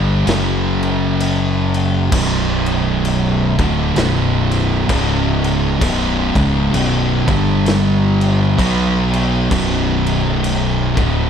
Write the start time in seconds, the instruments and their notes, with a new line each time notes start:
Already playing: fingered electric bass G1, distorted electric guitar G2 D3 G3
0.27 fingered electric bass F#1, distorted electric guitar F#2 C#3 F#3, snare, crash
0.83 crash
1.20 crash
1.74 crash
2.12 fingered electric bass B0, distorted electric guitar B1 F#2 B2, kick, crash
2.66 crash
3.05 crash
3.58 fingered electric bass D1, distorted electric guitar D2 A2 D3, kick, crash
3.96 fingered electric bass B0, distorted electric guitar B1 F#2 B2, snare, crash
4.51 crash
4.89 fingered electric bass C#1, distorted electric guitar C#2 G#2 C#3, kick, crash
5.44 crash
5.81 fingered electric bass B0, distorted electric guitar B1 F#2 B2, kick, crash
6.34 fingered electric bass C#1, distorted electric guitar C#2 G#2 C#3, kick, crash
6.72 fingered electric bass B0, distorted electric guitar B1 F#2 B2, crash
7.26 fingered electric bass G1, distorted electric guitar G2 D3 G3, kick, crash
7.66 snare, crash
8.21 crash
8.57 fingered electric bass B1, distorted electric guitar B2 F#3 B3, kick, crash
9.13 crash
9.49 fingered electric bass B0, distorted electric guitar B1 F#2 B2, kick, crash
10.06 crash
10.44 crash
10.96 fingered electric bass D1, distorted electric guitar D2 A2 D3, kick, crash